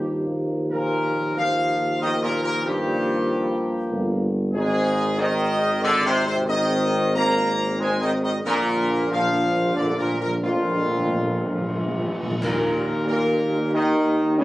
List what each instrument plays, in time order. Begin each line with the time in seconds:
Already playing: tuba D#2, trombone section G2, french horn section F3 A#3, trumpet section G4
0.71 trombone section A#2, french horn section F3 A#3, trumpet section A#4
1.37 trombone section F3, french horn section F3 A#3, trumpet section F5
2.01 trombone section D#3, french horn section F3 A#3, trumpet section D#5
2.22 trombone section A#2, trumpet section A#4
2.43 trombone section A#2, trumpet section A#4
2.64 trombone section G2, french horn section F3 A#3, trumpet section G4
3.91 tuba G1
4.53 tuba G#1, trombone section G#2, french horn section D#3 C4, trumpet section G#4
5.18 french horn section D#3 C4, trombone section D#3, trumpet section D#5
5.83 trombone section D3, trumpet section D5
6.05 trombone section C3, trumpet section C5
6.26 trombone section C3, trumpet section C5
6.47 trombone section D#3, french horn section D#3 C4, trumpet section D#5
7.15 trombone section A#3, trumpet section A#5
7.79 french horn section D#3 C4, trombone section G#3, trumpet section G#5
8.01 trombone section D#3, trumpet section D#5
8.23 trombone section D#3, trumpet section D#5
8.44 tuba A#1, timpani A#2, trombone section A#2, french horn section D3 A#3, trumpet section A#4
8.60 timpani A#2
8.68 timpani A#2
8.76 timpani A#2
8.84 timpani A#2
8.92 timpani A#2
9.00 timpani A#2
9.07 timpani A#2, french horn section D3 A#3, trombone section F3
9.12 timpani A#2, trumpet section F5
9.23 timpani A#2
9.30 timpani A#2
9.52 timpani A#2
9.60 timpani A#2
9.66 timpani A#2
9.74 timpani A#2, french horn section D3 A#3, trombone section D3, trumpet section D5
9.82 timpani A#2
9.89 timpani A#2
9.96 timpani A#2, trombone section A#2, trumpet section A#4
10.04 timpani A#2
10.12 timpani A#2
10.19 timpani A#2, trombone section A#2, trumpet section A#4
10.27 timpani A#2
10.35 timpani A#2
10.42 trombone section F2, timpani A#2, french horn section D3 A#3, trumpet section F4
10.51 timpani A#2
10.59 timpani A#2
10.67 timpani A#2
10.75 timpani A#2
10.83 timpani A#2
10.90 timpani A#2
10.98 timpani A#2
11.06 timpani A#2
11.14 timpani A#2
11.22 timpani A#2
11.29 timpani A#2
11.37 timpani A#2
11.45 timpani A#2
11.53 timpani A#2
11.61 timpani A#2
11.68 timpani A#2
11.75 timpani A#2
11.83 timpani A#2
11.91 timpani A#2
11.99 timpani A#2
12.07 timpani A#2
12.15 timpani A#2
12.23 timpani A#2
12.30 timpani A#2
12.41 tuba D#2, trombone section A#2, timpani D#3, french horn section A#3, trumpet section A#4, concert bass drum, crash
13.07 trombone section A#2, french horn section A#3, trumpet section A#4
13.73 trombone section D#3, french horn section D#4, trumpet section D#5
14.38 tuba C#2, trombone section C#3, french horn section C#4, trumpet section C#5